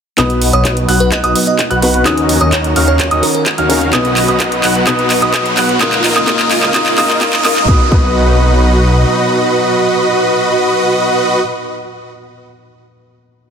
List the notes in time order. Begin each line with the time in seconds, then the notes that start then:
0.17 B1 B2 F#3 B3 D#4 F#4 B4 D#5 D#6, kick, clap, closed hi-hat, riser
0.30 closed hi-hat
0.41 open hi-hat
0.53 B1 F#4 B4 C#5 D#5 D#6, closed hi-hat
0.65 kick, clap, closed hi-hat
0.77 closed hi-hat
0.88 B1 F#4 B4 F#5 F#6, open hi-hat
1.00 B4, closed hi-hat
1.12 D#5, kick, clap, closed hi-hat
1.24 B1 F#4 B4 D#5 D#6, closed hi-hat
1.36 open hi-hat
1.47 D#5, closed hi-hat
1.59 kick, clap, closed hi-hat
1.70 B1 F#4 B4 F#5 F#6, closed hi-hat
1.82 B3 D#4 F#4 B4, open hi-hat
1.94 closed hi-hat
2.05 D#2 D#3 C#4 D#4 F#4 A#4 D#5 D#6, kick, clap, closed hi-hat
2.17 closed hi-hat
2.29 open hi-hat
2.41 D#2 C#4 D#4 F#4 A#4 C#5 D#5 D#6, closed hi-hat
2.53 kick, clap, closed hi-hat
2.64 closed hi-hat
2.76 D#2 C#4 D#4 F#4 A#4 F5 F6, open hi-hat
2.88 C#5, closed hi-hat
3.00 kick, clap, closed hi-hat
3.11 D#2 C#4 D#4 F#4 A#4 D#5 D#6, closed hi-hat
3.23 A#4, open hi-hat
3.35 A#4, closed hi-hat
3.46 kick, clap, closed hi-hat
3.58 D#2 C#4 D#4 F#4 A#4 F5 F6, closed hi-hat
3.69 C#4 D#4 F#4 A#4, open hi-hat
3.81 closed hi-hat
3.92 B1 B2 F#3 B3 D#4 F#4 B4 D#5 D#6, kick, clap, closed hi-hat
4.05 closed hi-hat
4.17 clap, open hi-hat
4.28 B1 F#4 B4 D#5 D#6, closed hi-hat
4.40 kick, clap, closed hi-hat
4.52 closed hi-hat
4.63 B1 F#4 B4 F#5 F#6, clap, open hi-hat
4.75 closed hi-hat
4.86 B1 B2 B3 D#4 F#4 B4 D#5 D#6, kick, clap, closed hi-hat
4.99 closed hi-hat
5.10 clap, open hi-hat
5.22 B1 F#4 B4 D#5 D#6, closed hi-hat
5.34 kick, clap, closed hi-hat
5.46 closed hi-hat
5.57 B1 F#4 B4 F#5 F#6, clap, open hi-hat
5.69 closed hi-hat
5.80 C#2 A#2 C#3 A#3 D#4 F4 A#4 D#5 D#6, kick, clap, closed hi-hat
5.93 clap, closed hi-hat
6.04 clap, open hi-hat
6.16 C#2 F4 A#4 D#5 D#6, clap
6.26 C#2 A#2 A#3 D#4 F4 A#4 D#5 D#6, kick, clap, closed hi-hat
6.39 clap, closed hi-hat
6.51 clap, open hi-hat
6.63 C#2 F4 A#4 D#5 D#6, clap
6.73 C#2 A#2 A#3 D#4 F4 A#4 D#5 D#6, kick, clap, closed hi-hat
6.86 clap, closed hi-hat
6.97 C#2 A#2 A#3 D#4 F4 A#4 D#5 D#6, clap, open hi-hat
7.10 clap, closed hi-hat
7.20 C#2 A#2 A#3 D#4 F4 A#4 D#5 D#6, kick, clap, closed hi-hat
7.33 clap, closed hi-hat
7.44 C#2 A#2 A#3 D#4 F4 A#4 D#5 D#6, clap, open hi-hat
7.57 clap, closed hi-hat
7.67 B1 B2 F#3 B3 D#4 F#4 B4 D#5 D#6, kick
7.90 B1 B3 D#4 F#4 B4 D#5 D#6, kick